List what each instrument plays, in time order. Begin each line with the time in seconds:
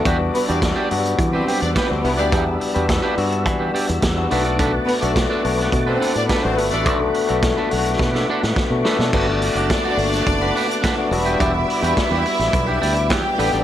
Already playing: tonewheel organ B4 D6
0.05 fingered electric bass E2, tine electric piano G3 B3 D4 F#4, clean electric guitar D4 G4 B4, tonewheel organ D5 E5, kick, closed hi-hat
0.19 muted clean electric guitar stroke
0.34 string section B3 B4, muted clean electric guitar stroke, open hi-hat
0.47 fingered electric bass E2, tine electric piano G3 B3 D4 F#4, string section D4 D5, clean electric guitar D4 G4 D5, closed hi-hat
0.62 muted clean electric guitar stroke, kick, snare, closed hi-hat
0.76 clean electric guitar D4 G4 D5
0.91 fingered electric bass G2, tine electric piano F#3 B3 D4 F#4, muted clean electric guitar stroke, open hi-hat
0.98 tine electric piano G3
1.05 muted clean electric guitar stroke, closed hi-hat
1.19 fingered electric bass E3, muted clean electric guitar stroke, kick, closed hi-hat
1.32 string section C4 C5, clean electric guitar D4 G4 B4
1.47 clean electric guitar D4 G4 B4, open hi-hat
1.60 fingered electric bass E2, string section D4 D5, muted clean electric guitar stroke, closed hi-hat
1.74 string section B3 B4, clean electric guitar D4 G4 B4, kick, snare, closed hi-hat
1.88 fingered electric bass D2, tine electric piano G3 B3 D4 F#4, string section C4 C5, muted clean electric guitar stroke
2.02 fingered electric bass C2, tine electric piano G3 B3 D4 E4, string section B3 B4, muted clean electric guitar stroke, open hi-hat
2.16 fingered electric bass D2, string section D4 D5, clean electric guitar D4 G4 B4, closed hi-hat
2.32 fingered electric bass E2, tine electric piano G3 B3 D4 G4, clean electric guitar D4 G4 D5, tonewheel organ E6, kick, closed hi-hat
2.47 muted clean electric guitar stroke
2.60 muted clean electric guitar stroke, open hi-hat
2.74 fingered electric bass E2, tine electric piano G3 B3 D4 F#4, clean electric guitar D4 G4 B4, closed hi-hat
2.88 muted clean electric guitar stroke, kick, snare, closed hi-hat
3.02 clean electric guitar D4 G4 B4
3.16 fingered electric bass G2, tine electric piano G3 B3 D4 F#4, muted clean electric guitar stroke, open hi-hat
3.31 muted clean electric guitar stroke, closed hi-hat
3.44 fingered electric bass E3, muted clean electric guitar stroke, kick, closed hi-hat
3.59 clean electric guitar D4 G4 B4
3.74 clean electric guitar D4 G4 D5, open hi-hat
3.88 fingered electric bass E2, muted clean electric guitar stroke, closed hi-hat
4.01 fingered electric bass E2, muted clean electric guitar stroke, kick, snare, closed hi-hat
4.17 tine electric piano G3 B3 D4 F#4, muted clean electric guitar stroke
4.31 fingered electric bass B1, tine electric piano A3 B3 D4 F#4, clean electric guitar D4 A4 B4, tonewheel organ F#5 A5 D6, open hi-hat
4.44 clean electric guitar D4 A4 D5, closed hi-hat
4.59 clean electric guitar D4 A4 B4, kick, closed hi-hat
4.74 muted clean electric guitar stroke
4.85 string section B3 B4, muted clean electric guitar stroke, open hi-hat
5.00 fingered electric bass B1, tine electric piano A3 B3 D4 F#4, string section D4 D5, clean electric guitar D4 A4 D5, closed hi-hat
5.15 muted clean electric guitar stroke, kick, snare, closed hi-hat
5.30 clean electric guitar D4 A4 D5
5.44 fingered electric bass B1, tine electric piano A3 B3 D4 F#4, muted clean electric guitar stroke, open hi-hat
5.57 muted clean electric guitar stroke, snare, closed hi-hat
5.72 fingered electric bass B2, muted clean electric guitar stroke, kick, closed hi-hat
5.87 string section C4 C5, clean electric guitar D4 A4 B4
6.00 clean electric guitar D4 A4 B4, open hi-hat
6.15 fingered electric bass A2, string section D4 D5, muted clean electric guitar stroke, closed hi-hat
6.28 string section B3 B4, clean electric guitar D4 A4 B4, kick, snare, closed hi-hat
6.43 fingered electric bass A1, tine electric piano A3 B3 D4 F#4, string section C4 C5, muted clean electric guitar stroke
6.57 fingered electric bass G1, tine electric piano A3 B3 D4 A4, string section B3 B4, tonewheel organ B5, muted clean electric guitar stroke, open hi-hat
6.71 fingered electric bass A1, string section D4 D5, clean electric guitar D4 A4 B4, closed hi-hat
6.85 fingered electric bass B1, tine electric piano A3 B3 D4 F#4, clean electric guitar D4 A4 D5, kick, closed hi-hat
7.01 muted clean electric guitar stroke
7.14 muted clean electric guitar stroke, open hi-hat
7.27 fingered electric bass B1, tine electric piano A3 B3 D4 F#4, clean electric guitar D4 A4 B4, closed hi-hat
7.42 muted clean electric guitar stroke, kick, snare, closed hi-hat
7.57 clean electric guitar D4 A4 B4
7.71 fingered electric bass B1, tine electric piano A3 B3 D4 E4, muted clean electric guitar stroke, open hi-hat
7.79 tine electric piano F#4
7.86 muted clean electric guitar stroke, closed hi-hat
7.99 fingered electric bass B2, muted clean electric guitar stroke, kick, snare
8.14 clean electric guitar D4 A4 B4, snare
8.30 clean electric guitar D4 A4 D5
8.43 fingered electric bass A2, muted clean electric guitar stroke, snare
8.56 muted clean electric guitar stroke, kick, snare
8.70 fingered electric bass B2, tine electric piano A3 B3 D4 F#4, muted clean electric guitar stroke
8.84 tine electric piano A3 B3 D4 F#4, clean electric guitar D4 A4 B4, snare
8.99 fingered electric bass B2, clean electric guitar D4 A4 D5, snare
9.13 fingered electric bass G1, tine electric piano A3 B3 D4 F#4, string section D4 D5, clean electric guitar D4 F#4 B4, tonewheel organ B4 D5 F#5 D6, kick, crash
9.29 muted clean electric guitar stroke
9.42 muted clean electric guitar stroke, open hi-hat
9.55 fingered electric bass F#1, clean electric guitar D4 F#4 D5, closed hi-hat
9.70 muted clean electric guitar stroke, kick, snare, closed hi-hat
9.85 clean electric guitar D4 F#4 D5
9.97 fingered electric bass G1, tine electric piano A3 A#3 D4 F#4, open hi-hat
10.05 tine electric piano B3
10.13 muted clean electric guitar stroke, snare, closed hi-hat
10.27 fingered electric bass F#1, muted clean electric guitar stroke, kick, closed hi-hat
10.41 clean electric guitar D4 F#4 B4
10.55 clean electric guitar D4 F#4 B4, open hi-hat
10.69 muted clean electric guitar stroke, closed hi-hat
10.82 clean electric guitar D4 F#4 B4, kick, snare, closed hi-hat
10.97 tine electric piano A3 B3 D4 F#4, muted clean electric guitar stroke
11.11 fingered electric bass E1, tine electric piano F#3 B3 D4 F#4, string section E4 E5, tonewheel organ E5 D6, muted clean electric guitar stroke, open hi-hat
11.18 tine electric piano G3
11.25 clean electric guitar D4 G4 B4, closed hi-hat
11.40 fingered electric bass E1, clean electric guitar D4 G4 D5, kick, closed hi-hat
11.54 muted clean electric guitar stroke
11.68 muted clean electric guitar stroke, open hi-hat
11.82 fingered electric bass E2, tine electric piano G3 B3 D4 F#4, clean electric guitar D4 G4 B4, closed hi-hat
11.96 muted clean electric guitar stroke, kick, snare, closed hi-hat
12.11 fingered electric bass E2, clean electric guitar D4 G4 B4
12.25 muted clean electric guitar stroke, open hi-hat
12.39 fingered electric bass A1, muted clean electric guitar stroke, snare, closed hi-hat
12.53 fingered electric bass B1, muted clean electric guitar stroke, kick, closed hi-hat
12.67 clean electric guitar D4 G4 B4
12.81 fingered electric bass D2, clean electric guitar D4 G4 D5, open hi-hat
12.95 muted clean electric guitar stroke, closed hi-hat
13.10 fingered electric bass E2, string section G4 G5, muted clean electric guitar stroke, kick, snare, closed hi-hat
13.24 muted clean electric guitar stroke
13.38 fingered electric bass A1, tine electric piano G3 B3 D4 A4, clean electric guitar D4 G4 B4, open hi-hat
13.53 fingered electric bass A1, clean electric guitar D4 G4 D5, closed hi-hat